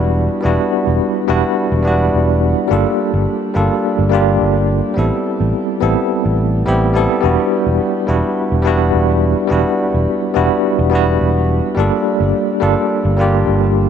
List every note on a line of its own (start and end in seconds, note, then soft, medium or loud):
0.00 0.27 E1 medium
0.00 0.41 G3 medium
0.00 0.42 B3 medium
0.00 0.44 D4 medium
0.00 0.45 E4 medium
0.00 0.46 F#4 loud
0.41 0.57 E1 loud
0.41 1.24 G3 medium
0.41 1.25 B3 medium
0.41 1.26 D4 medium
0.41 1.26 E4 medium
0.46 1.27 F#4 loud
0.87 0.99 E1 medium
1.28 1.41 E1 medium
1.28 1.81 G3 medium
1.28 1.82 B3 medium
1.28 1.82 D4 medium
1.28 1.83 E4 medium
1.28 1.83 F#4 loud
1.72 2.10 E1 loud
1.83 2.66 G3 medium
1.83 2.67 B3 medium
1.83 2.67 D4 medium
1.83 2.68 E4 medium
1.87 2.68 F#4 loud
2.14 2.53 E1 medium
2.68 2.83 G1 medium
2.68 3.51 G3 medium
2.68 3.52 A#3 medium
2.68 3.52 D4 medium
2.68 3.53 F4 medium
2.73 3.53 A4 loud
3.14 3.25 G1 medium
3.54 3.68 G1 medium
3.54 4.08 G3 medium
3.54 4.09 A#3 medium
3.54 4.09 D4 medium
3.54 4.09 F4 medium
3.54 4.10 A4 medium
3.99 4.37 G1 loud
4.09 4.92 G3 medium
4.09 4.93 A#3 medium
4.09 4.94 D4 medium
4.09 4.94 F4 medium
4.14 4.95 G4 loud
4.41 4.80 G1 medium
4.94 5.09 A1 loud
4.94 5.77 G3 medium
4.94 5.78 B3 medium
4.94 5.79 C4 medium
4.94 5.79 E4 medium
4.99 5.80 A4 medium
5.40 5.52 A1 medium
5.80 5.94 A1 medium
5.80 6.35 G3 medium
5.80 6.35 B3 medium
5.80 6.35 C4 medium
5.80 6.36 E4 medium
5.80 6.36 A4 medium
6.26 6.64 A1 loud
6.66 7.06 A1 medium
6.66 6.91 G3 loud
6.66 6.92 B3 medium
6.66 6.92 C4 medium
6.66 6.92 E4 medium
6.66 6.93 G4 loud
6.94 7.19 G3 medium
6.94 7.20 B3 medium
6.94 7.20 C4 medium
6.94 7.20 E4 medium
6.94 7.21 A4 loud
7.21 7.36 E1 loud
7.21 8.04 G3 medium
7.21 8.04 B3 medium
7.21 8.05 D4 medium
7.21 8.06 E4 medium
7.26 8.06 F#4 loud
7.66 7.78 E1 medium
8.07 8.21 E1 medium
8.07 8.61 G3 medium
8.07 8.61 B3 medium
8.07 8.62 D4 medium
8.07 8.62 E4 medium
8.07 8.62 F#4 medium
8.52 8.90 E1 medium
8.62 9.45 G3 medium
8.62 9.46 B3 medium
8.62 9.47 D4 medium
8.62 9.47 E4 medium
8.67 9.48 F#4 loud
8.94 9.33 E1 medium
9.47 9.63 E1 medium
9.47 10.30 G3 medium
9.47 10.31 B3 medium
9.47 10.32 D4 medium
9.47 10.32 E4 medium
9.52 10.33 F#4 medium
9.94 10.05 E1 medium
10.34 10.48 E1 medium
10.34 10.88 G3 medium
10.34 10.88 B3 medium
10.34 10.88 D4 medium
10.34 10.89 E4 medium
10.34 10.89 F#4 loud
10.79 11.17 E1 loud
10.90 11.72 G3 medium
10.90 11.73 B3 medium
10.90 11.74 D4 medium
10.90 11.74 E4 medium
10.95 11.75 F#4 loud
11.21 11.59 E1 medium
11.75 11.89 G1 medium
11.75 12.57 G3 medium
11.75 12.58 A#3 medium
11.75 12.58 D4 medium
11.75 12.59 F4 medium
11.80 12.60 A4 loud
12.20 12.31 G1 medium
12.60 12.74 G1 medium
12.60 13.14 G3 medium
12.60 13.14 A#3 medium
12.60 13.15 D4 medium
12.60 13.15 F4 medium
12.60 13.15 A4 loud
13.05 13.43 G1 loud
13.16 13.89 G3 medium
13.16 13.89 A#3 medium
13.16 13.89 D4 medium
13.16 13.89 F4 medium
13.21 13.89 G4 loud
13.47 13.86 G1 medium